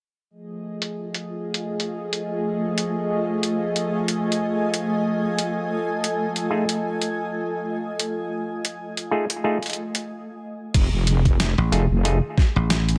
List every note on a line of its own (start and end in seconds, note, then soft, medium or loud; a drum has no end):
0.30 10.05 F3 medium
0.30 10.05 A3 medium
0.30 10.09 F4 medium
0.30 5.49 G#4 medium
0.30 10.05 D#5 medium
0.82 10.09 A3 medium
0.82 closed hi-hat medium
1.14 closed hi-hat medium
1.54 closed hi-hat medium
1.80 closed hi-hat medium
2.13 10.10 D#5 medium
2.13 closed hi-hat medium
2.23 10.09 G#5 medium
2.78 closed hi-hat medium
3.43 closed hi-hat medium
3.76 closed hi-hat medium
4.08 closed hi-hat medium
4.32 closed hi-hat medium
4.74 closed hi-hat medium
5.39 closed hi-hat medium
5.53 10.05 A4 medium
6.04 closed hi-hat medium
6.36 closed hi-hat soft
6.50 6.64 A3 medium
6.50 6.64 D#4 medium
6.50 6.64 F4 medium
6.50 6.64 G#4 medium
6.69 closed hi-hat medium
7.02 closed hi-hat medium
8.00 closed hi-hat medium
8.65 closed hi-hat medium
8.97 closed hi-hat soft
9.11 9.25 A3 medium
9.11 9.25 D#4 medium
9.11 9.25 F4 medium
9.11 9.25 G#4 loud
9.30 closed hi-hat medium
9.44 9.58 A3 medium
9.44 9.58 D#4 medium
9.44 9.58 F4 medium
9.44 9.58 G#4 loud
9.63 closed hi-hat soft
9.66 closed hi-hat soft
9.70 closed hi-hat soft
9.73 closed hi-hat soft
9.95 closed hi-hat medium
10.74 10.90 F1 loud
10.74 12.98 D#3 medium
10.74 12.98 A3 medium
10.74 12.98 G#4 medium
10.74 kick loud
10.74 closed hi-hat medium
10.74 crash medium
10.92 11.55 F1 medium
11.07 closed hi-hat medium
11.25 kick loud
11.25 closed hi-hat soft
11.40 snare loud
11.40 closed hi-hat medium
11.58 11.70 A1 medium
11.72 11.88 F1 loud
11.72 11.86 A3 medium
11.72 11.86 D#4 medium
11.72 11.86 F4 medium
11.72 11.86 G#4 medium
11.72 snare soft
11.72 closed hi-hat medium
11.90 12.20 F1 medium
12.05 12.18 A3 medium
12.05 12.18 D#4 medium
12.05 12.18 F4 medium
12.05 12.18 G#4 loud
12.05 closed hi-hat medium
12.38 kick loud
12.38 snare medium
12.56 12.98 A1 medium
12.70 snare loud
12.70 closed hi-hat medium
12.89 closed hi-hat medium